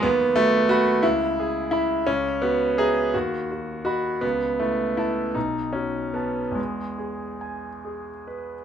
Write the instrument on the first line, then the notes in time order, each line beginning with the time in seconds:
grand piano
0.03 D#2 B3
0.36 A3 F#4
0.69 F#4 F#5 B5
1.03 C#2 E4
1.40 G#4
1.71 E4 E5 B5
2.07 C#2 C#4
2.42 B3 F#4
2.78 G#4 E5 A#5
3.14 D#2 F#4
3.51 F#4
3.85 F#4 D#5 B5
4.21 C#2 B3
4.60 A3 E4
4.97 E4 E5 A5
5.35 B1 D#4
5.73 C#4 F#4
6.14 B3 B4 A5
6.51 E2 G#3
6.98 G#4
7.41 G#5
7.85 G#4
8.27 B4